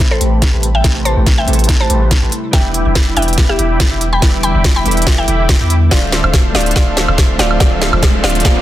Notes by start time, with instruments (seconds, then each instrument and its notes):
Already playing: 808-style bass A1, ambient pad C3 G3 A3 E4, supersaw synth A3 G4 B4 C5 A5, synth keys A3 C4 E4 G4 B4 B5
0.11 synth pluck A4 C5
0.21 808-style bass A1, supersaw synth A3 G4 B4 C5 A5, closed hi-hat
0.42 kick, snare, closed hi-hat
0.53 808-style bass A1, supersaw synth A3 G4 B4 C5 A5
0.63 closed hi-hat
0.75 synth pluck E5 G5
0.82 synth keys A3 C4 E4 G4, supersaw synth A3 G4 B4 C5 A5, kick, snare, closed hi-hat
0.86 synth keys B4
1.05 synth pluck C5 A5, closed hi-hat
1.17 808-style bass A1, supersaw synth A3 G4 B4 C5 G5
1.26 kick, snare, closed hi-hat
1.38 synth pluck E5 G5
1.46 808-style bass A1, synth keys A3 C4 E4 G4, supersaw synth A3 G4 B4 C5 A5, closed hi-hat
1.50 synth keys A4, closed hi-hat
1.59 closed hi-hat
1.64 closed hi-hat
1.69 kick, snare, closed hi-hat
1.80 synth pluck C5 A5
1.90 808-style bass A1, supersaw synth A3 G4 B4 C5 A5, closed hi-hat
2.11 kick, snare, closed hi-hat
2.22 808-style bass A1, supersaw synth A3 G4 B4 C5 A5
2.32 ambient pad D3 E3, closed hi-hat
2.51 808-style bass E1, synth keys G3 B3 D4 E4 B4, supersaw synth E4 E5 G5 B5 D6, synth pluck E5 G5, kick, snare, closed hi-hat
2.74 closed hi-hat
2.86 808-style bass E1, supersaw synth E4 E5 G5 B5 D6
2.95 kick, snare, closed hi-hat
3.14 808-style bass E1, synth keys G3 B3 D4 E4 B4, supersaw synth E4 E5 G5 B5 D6, synth pluck E5 G5, closed hi-hat
3.22 closed hi-hat
3.28 closed hi-hat
3.33 closed hi-hat
3.38 kick, snare, closed hi-hat
3.49 synth pluck G4 E5
3.59 808-style bass E1, supersaw synth E4 E5 G5 B5 D6, closed hi-hat
3.80 kick, snare, closed hi-hat
3.91 808-style bass E1, supersaw synth E4 E5 G5 B5 D6
4.01 closed hi-hat
4.13 synth pluck G5 B5
4.20 synth keys G3 B3 D4 E4, supersaw synth E4 E5 G5 B5 D6, kick, snare, closed hi-hat
4.24 synth keys B4
4.43 synth pluck G5 B5, closed hi-hat
4.55 808-style bass E1, supersaw synth E4 E5 G5 B5 D6
4.64 kick, snare, closed hi-hat
4.76 synth pluck G5 B5
4.84 808-style bass E1, synth keys G3 B3 D4 E4, supersaw synth E4 E5 G5 B5 D6, closed hi-hat
4.88 synth keys A4, closed hi-hat
4.97 closed hi-hat
5.02 closed hi-hat
5.07 kick, snare, closed hi-hat
5.18 synth pluck E5 G5
5.28 808-style bass E1, supersaw synth E4 E5 G5 B5 D6, closed hi-hat
5.49 kick, snare, closed hi-hat
5.60 808-style bass E2, supersaw synth E4 E5 G5 B5 D6
5.70 closed hi-hat
5.89 808-style bass D1, ambient pad F3 A3 C4 F4, synth keys A3 C4 D4 F4 C5, supersaw synth D4 A4 C5 E5 F5, synth pluck D5 F5, kick, snare, closed hi-hat, riser
6.12 snare, closed hi-hat
6.24 808-style bass D1, supersaw synth D4 A4 C5 E5 F5, high woodblock
6.33 kick, snare, closed hi-hat
6.52 808-style bass D1, synth keys A3 C4 D4 F4, supersaw synth D4 A4 C5 E5 F5, synth pluck D5 F5, snare, open hi-hat
6.56 synth keys C5
6.61 closed hi-hat
6.66 closed hi-hat
6.71 synth keys A3 C4, closed hi-hat
6.76 808-style bass D1, supersaw synth D4 A4 C5 E5 F5, synth keys D4 F4 C5, synth pluck D5 F5, kick, snare, closed hi-hat
6.97 snare, closed hi-hat
7.08 808-style bass D1, supersaw synth D4 A4 C5 E5 F5, high woodblock
7.18 kick, snare, closed hi-hat
7.37 808-style bass D1, synth keys A3 C4 D4 F4 C5, supersaw synth D4 A4 C5 E5 F5, synth pluck D5 F5, snare, closed hi-hat
7.51 high woodblock
7.58 synth keys A3 C4 D4 F4, supersaw synth A4 E5, synth pluck D5 F5, kick, snare, closed hi-hat
7.62 synth keys C5
7.82 snare, closed hi-hat
7.93 808-style bass D1, supersaw synth D4 A4 C5 E5 F5, high woodblock
8.03 kick, snare, closed hi-hat
8.22 808-style bass D1, synth keys A3 C4 D4 F4, supersaw synth D4 A4 C5 E5 F5, synth pluck D5 F5, snare, open hi-hat
8.26 synth keys C5, closed hi-hat
8.35 closed hi-hat
8.40 synth keys A3 C4, closed hi-hat
8.45 808-style bass D1, supersaw synth D4 A4 C5 E5, synth keys D4 F4 C5, synth pluck D5 F5, kick, snare